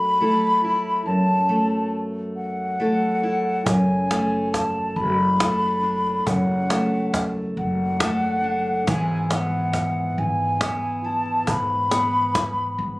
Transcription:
Already playing: steel-string acoustic guitar F#2 A3 A4, flute B5
0.21 steel-string acoustic guitar A3 E4 A4
0.64 steel-string acoustic guitar E4
1.06 steel-string acoustic guitar F#2, flute A5
1.49 steel-string acoustic guitar A3
2.36 flute F#5
2.80 steel-string acoustic guitar A3 E4 A4
3.23 steel-string acoustic guitar E4
3.65 upright bass F#1, steel-string acoustic guitar F#2, flute G#5, cajon bass
4.11 steel-string acoustic guitar A3, cajon slap
4.52 flute A5, cajon bass, cajon slap
4.96 upright bass F#1, flute B5, cajon slap
5.40 steel-string acoustic guitar A3 D4 A4, cajon bass, cajon slap
5.83 steel-string acoustic guitar D4
6.06 cajon slap
6.27 upright bass F#1, steel-string acoustic guitar F#2, flute F#5, cajon bass
6.70 steel-string acoustic guitar A3, cajon slap
7.14 cajon bass, cajon slap
7.57 upright bass F#1, flute F#5, cajon slap
8.00 steel-string acoustic guitar A3 D4 A4, cajon bass, cajon slap
8.44 steel-string acoustic guitar D4
8.66 cajon slap
8.87 upright bass G#1, steel-string acoustic guitar G#2 E3 B3 E4 G#4, flute G#5, cajon bass
9.31 steel-string acoustic guitar B3, flute F#5, cajon slap
9.73 cajon bass, cajon slap
10.18 upright bass G#1, flute G#5, cajon slap
10.61 steel-string acoustic guitar B3 E4, cajon bass, cajon slap
11.04 steel-string acoustic guitar E4, flute A5
11.25 cajon slap
11.47 upright bass G#1, steel-string acoustic guitar G#2, flute B5, cajon bass
11.70 cajon slap
11.91 steel-string acoustic guitar B3, cajon slap
12.35 cajon bass, cajon slap
12.78 upright bass G#1, cajon slap

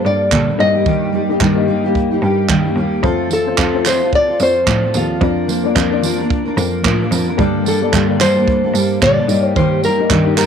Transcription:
Already playing: upright piano A#3 G4 A4 D5
0.04 cello G2, steel-string acoustic guitar G3 A#3 D4 A4, nylon-string guitar D5
0.31 steel-string acoustic guitar G2 D3 G3 A#3 D4 A4, cello A#2, kick, clap
0.49 steel-string acoustic guitar G3 A#3 D4 A4
0.58 cello G2, steel-string acoustic guitar G3 A#3 D#4, upright piano A#3 D#4 F#4 D#5, nylon-string guitar D#5
0.62 steel-string acoustic guitar G4, upright piano G4
0.75 steel-string acoustic guitar G3 A#3 D#4 G4
0.86 steel-string acoustic guitar G2 D#3 G3 A#3 D#4 G4, kick
1.13 steel-string acoustic guitar G3 A#3 D#4 G4
1.28 steel-string acoustic guitar G3 A#3 D#4 G4, upright piano A#3 D#4 G4 D#5
1.40 steel-string acoustic guitar G2 D#3 G3 A#3 D#4 G4, cello G2, kick, clap
1.55 upright piano A#3 D#4 G4 D#5
1.67 steel-string acoustic guitar G3 A#3 D#4 G4
1.84 steel-string acoustic guitar G3 A#3 D#4 G4
1.95 kick
2.10 steel-string acoustic guitar G3 A#3 D#4 G4
2.21 cello G2, steel-string acoustic guitar G3 A#3 D#4 G4
2.49 steel-string acoustic guitar G2 D#3 G3 A#3 D#4 G4, cello G2, kick, clap
2.65 steel-string acoustic guitar G3 A#3 D#4 G4
2.76 cello D#2, steel-string acoustic guitar G3 A#3 D#4 G4
3.02 cello F2, steel-string acoustic guitar F3 C4 F4 A4, upright piano A3 C4 F4 C5, kick
3.30 steel-string acoustic guitar F3 C4 F4 A4, nylon-string guitar A4, tambourine
3.46 upright piano A3 C4 F4 C5, steel-string acoustic guitar C4 F4 A4
3.58 cello F2, steel-string acoustic guitar F3 C4 F4 A4, kick, clap
3.73 upright piano A3 C4 F4 C5
3.85 steel-string acoustic guitar F3 C4 F4 A4, nylon-string guitar C5, clap, tambourine
4.01 steel-string acoustic guitar C4 F4 A4
4.13 nylon-string guitar D5, kick
4.28 steel-string acoustic guitar C4 F4 A4
4.39 cello F2, steel-string acoustic guitar F3 C4 F4 A4, tambourine
4.43 nylon-string guitar C5
4.66 cello A2, steel-string acoustic guitar F3 C4 F4 A4, kick, clap
4.83 steel-string acoustic guitar C4 F4 A4
4.93 cello D#2, steel-string acoustic guitar F3 C4 F4 A4, nylon-string guitar F4, tambourine
5.20 cello F2, steel-string acoustic guitar F3 A#3 D4 A#4, upright piano A#3 D4 F4 D5, kick
5.47 steel-string acoustic guitar F3 A#3 D4 A#4, tambourine
5.63 upright piano A#3 D4 F4 D5, steel-string acoustic guitar A#3 D4 A#4
5.75 cello F2, steel-string acoustic guitar F3 A#3 D4 A#4, kick, clap
5.91 upright piano A#3 D4 F4 D5
6.02 steel-string acoustic guitar F3 A#3 D4 A#4, tambourine
6.18 steel-string acoustic guitar A#3 D4 A#4
6.30 kick
6.45 steel-string acoustic guitar A#3 D4 A#4
6.56 cello F2, steel-string acoustic guitar F3 A#3 D4 A#4, tambourine
6.83 cello A2, steel-string acoustic guitar F3 A#3 D4 A#4, kick, clap
7.01 steel-string acoustic guitar A#3 D4 A#4
7.11 cello F2, steel-string acoustic guitar F3 A#3 D4 A#4, tambourine
7.28 steel-string acoustic guitar A#3 D4 A#4
7.37 cello G2, steel-string acoustic guitar G2 D3 G3 A#3 D4 A4, upright piano A#3 G4 A4 D5, kick
7.65 steel-string acoustic guitar G3 A#3 D4 A4, nylon-string guitar A4, tambourine
7.80 steel-string acoustic guitar G3 A#3 D4 A4, upright piano A#3 G4 A4 D5
7.92 steel-string acoustic guitar G2 D3 G3 A#3 D4 A4, cello G2, kick, clap
8.08 upright piano A#3 G4 A4 D5
8.19 steel-string acoustic guitar G3 A#3 D4 A4, nylon-string guitar C5, clap, tambourine
8.36 steel-string acoustic guitar G3 A#3 D4 A4
8.48 kick
8.63 steel-string acoustic guitar G3 A#3 D4 A4
8.74 cello G2, steel-string acoustic guitar G3 A#3 D4 A4, tambourine
9.01 steel-string acoustic guitar G2 D3 G3 A#3 D4 A4, cello A#2, nylon-string guitar D5, kick, clap
9.18 steel-string acoustic guitar G3 A#3 D4 A4
9.27 cello G2, steel-string acoustic guitar G3 A#3 D#4 G4, upright piano A#3 D#4 G4 D#5, tambourine
9.55 steel-string acoustic guitar G2 D#3 G3 A#3 D#4 G4, nylon-string guitar C5, kick
9.82 steel-string acoustic guitar G3 A#3 D#4 G4, nylon-string guitar A#4, tambourine
9.98 steel-string acoustic guitar G3 A#3 D#4 G4, upright piano A#3 D#4 G4 D#5
10.10 cello G2, steel-string acoustic guitar G2 D#3 G3 A#3 D#4 G4, kick, clap
10.26 upright piano A#3 D#4 G4 D#5
10.37 steel-string acoustic guitar G3 A#3 D#4 G4, nylon-string guitar A#4, clap, tambourine

